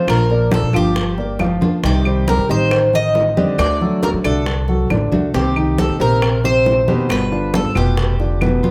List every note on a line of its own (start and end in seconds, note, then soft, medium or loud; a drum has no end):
0.00 0.22 F3 medium
0.00 0.23 F4 medium
0.00 0.23 F5 medium
0.07 0.60 A#1 medium
0.07 0.51 F3 medium
0.07 0.51 A#3 medium
0.07 0.51 D4 medium
0.07 0.51 F4 medium
0.07 0.53 A#4 medium
0.07 high bongo medium
0.07 high conga soft
0.07 claves medium
0.30 0.66 A#3 medium
0.30 0.66 A#4 medium
0.30 0.67 D5 medium
0.30 high conga soft
0.51 0.73 F3 soft
0.51 0.73 A#3 soft
0.51 0.73 D4 soft
0.51 0.73 F4 medium
0.51 0.75 A4 medium
0.51 high bongo medium
0.51 high conga medium
0.63 0.72 A#2 medium
0.73 1.57 G1 medium
0.73 1.10 F3 medium
0.73 0.94 A#3 soft
0.73 0.95 D4 soft
0.73 0.95 F4 medium
0.73 1.10 F4 medium
0.73 1.59 G4 medium
0.73 1.10 F5 medium
0.73 high bongo soft
0.73 claves medium
0.96 muted nylon-string guitar stroke medium
0.96 high bongo medium
0.96 high conga soft
1.18 1.36 A#3 medium
1.18 1.36 A#4 medium
1.18 1.36 D5 medium
1.18 high bongo soft
1.18 high conga soft
1.39 1.76 F3 medium
1.39 1.76 F4 medium
1.39 1.76 F5 medium
1.39 high bongo soft
1.39 low bongo medium
1.39 high conga medium
1.39 claves medium
1.61 1.83 A#3 soft
1.61 1.83 D4 medium
1.61 1.82 F4 medium
1.61 high bongo soft
1.61 high conga medium
1.83 2.35 C2 loud
1.83 2.26 C3 medium
1.83 2.26 D#3 medium
1.83 2.02 D#3 medium
1.83 2.26 G3 medium
1.83 2.27 C4 medium
1.83 2.02 D#4 medium
1.83 2.27 G4 medium
1.83 2.30 G4 medium
1.83 2.02 D#5 medium
1.83 high bongo medium
1.83 high conga soft
2.05 2.41 G3 medium
2.05 2.42 G4 medium
2.05 2.42 C5 medium
2.05 high conga soft
2.05 claves medium
2.27 2.48 D#3 soft
2.27 2.48 G3 medium
2.27 2.48 C4 soft
2.27 2.48 G4 medium
2.27 2.50 A#4 medium
2.27 high bongo medium
2.27 high conga medium
2.38 2.49 C3 medium
2.49 3.33 A1 medium
2.49 2.85 D#3 medium
2.49 2.70 D#3 soft
2.49 2.71 G3 soft
2.49 2.70 C4 medium
2.49 2.85 D#4 medium
2.49 2.70 G4 medium
2.49 2.95 C5 medium
2.49 2.86 D#5 medium
2.49 high bongo soft
2.49 high conga soft
2.71 muted nylon-string guitar stroke soft
2.71 high bongo medium
2.71 high conga soft
2.71 claves medium
2.93 3.29 D#3 medium
2.93 3.29 D#4 medium
2.93 3.30 D#5 medium
2.93 3.56 D#5 medium
2.93 high bongo soft
2.93 high conga soft
3.15 high bongo soft
3.15 low bongo medium
3.15 high conga soft
3.37 3.73 D3 medium
3.37 3.59 D#3 medium
3.37 3.58 G3 medium
3.37 3.58 C4 medium
3.37 3.73 D4 medium
3.37 3.58 G4 medium
3.37 3.73 D5 medium
3.37 high bongo soft
3.37 high conga medium
3.58 4.11 D2 medium
3.58 4.01 D3 medium
3.58 4.02 A3 medium
3.58 4.02 D4 medium
3.58 4.03 F#4 medium
3.58 4.03 D5 medium
3.58 high bongo medium
3.58 high conga soft
3.58 claves medium
3.81 4.17 F#3 medium
3.81 4.17 F#4 medium
3.81 4.17 A4 medium
3.81 high conga soft
4.02 4.24 D3 soft
4.02 4.24 A3 soft
4.02 4.24 D4 soft
4.02 4.23 F#4 soft
4.02 4.09 A#4 medium
4.02 high bongo medium
4.02 high conga medium
4.14 4.24 D3 medium
4.24 4.87 C2 medium
4.24 4.61 D3 medium
4.24 4.45 A3 soft
4.24 4.61 D4 medium
4.24 4.45 D4 medium
4.24 4.45 F#4 medium
4.24 5.08 A4 medium
4.24 4.61 D5 medium
4.24 high bongo soft
4.24 claves medium
4.46 muted nylon-string guitar stroke medium
4.46 high bongo medium
4.46 high conga soft
4.68 4.87 F#3 medium
4.68 4.87 F#4 medium
4.68 4.87 A4 medium
4.68 high bongo soft
4.68 high conga soft
4.90 5.10 A1 medium
4.90 5.26 D3 medium
4.90 5.27 D4 medium
4.90 5.27 D5 medium
4.90 high bongo soft
4.90 low bongo medium
4.90 high conga medium
4.90 claves medium
5.12 5.32 C2 medium
5.12 5.34 A3 medium
5.12 5.33 D4 medium
5.12 5.33 F#4 medium
5.12 high bongo soft
5.12 high conga medium
5.34 5.86 C2 medium
5.34 5.77 C3 medium
5.34 5.52 C3 medium
5.34 5.77 D#3 medium
5.34 5.77 A#3 medium
5.34 5.52 C4 medium
5.34 5.78 C4 medium
5.34 5.79 G4 medium
5.34 5.78 G4 medium
5.34 5.52 C5 medium
5.34 high bongo medium
5.34 high conga soft
5.56 5.92 D#3 medium
5.56 5.92 D#4 medium
5.56 5.93 G4 medium
5.56 high conga soft
5.56 claves medium
5.78 5.99 D#3 soft
5.78 6.00 A#3 soft
5.78 5.99 C4 soft
5.78 5.99 G4 medium
5.78 6.01 A4 medium
5.78 high bongo medium
5.78 high conga medium
5.89 5.99 C3 medium
6.00 6.84 A#1 medium
6.00 6.36 C3 medium
6.00 6.21 D#3 medium
6.00 6.22 A#3 soft
6.00 6.36 C4 medium
6.00 6.21 C4 soft
6.00 6.21 G4 medium
6.00 6.45 A#4 medium
6.00 6.36 C5 medium
6.00 high bongo soft
6.00 high conga soft
6.22 muted nylon-string guitar stroke medium
6.22 high bongo medium
6.22 high conga soft
6.22 claves medium
6.44 6.80 C3 medium
6.44 6.80 C4 medium
6.44 6.80 C5 medium
6.44 7.11 C5 medium
6.44 high bongo soft
6.44 high conga soft
6.66 high bongo soft
6.66 low bongo medium
6.66 high conga soft
6.88 7.24 B2 medium
6.88 7.10 D#3 medium
6.88 7.08 A#3 medium
6.88 7.24 B3 medium
6.88 7.09 C4 medium
6.88 7.09 G4 medium
6.88 7.24 B4 medium
6.88 high bongo soft
6.88 high conga medium
7.09 7.62 G1 medium
7.09 7.52 G3 medium
7.09 7.53 B3 medium
7.09 7.53 F4 medium
7.09 7.55 B4 medium
7.09 high bongo medium
7.09 high conga soft
7.09 claves medium
7.32 7.68 D3 medium
7.32 7.68 D4 medium
7.32 7.68 F4 medium
7.32 high conga soft
7.53 7.75 G3 soft
7.53 7.75 B3 soft
7.53 7.74 F4 medium
7.53 7.77 A4 medium
7.53 high bongo medium
7.53 high conga medium
7.65 7.75 G2 medium
7.75 8.59 F1 medium
7.75 8.12 B2 medium
7.75 8.12 B3 medium
7.75 7.97 B3 soft
7.75 7.96 F4 medium
7.75 8.60 G4 medium
7.75 8.12 B4 medium
7.75 high bongo soft
7.75 claves medium
7.97 muted nylon-string guitar stroke soft
7.97 high bongo medium
7.97 high conga soft
8.19 8.37 D3 medium
8.19 8.38 D4 medium
8.19 8.38 F4 medium
8.19 high bongo soft
8.19 high conga soft
8.41 8.71 B2 medium
8.41 8.71 B3 medium
8.41 8.71 B4 medium
8.41 high bongo soft
8.41 low bongo medium
8.41 high conga medium
8.41 claves medium
8.63 8.71 B3 medium
8.63 8.71 F4 medium
8.63 high bongo soft
8.63 high conga medium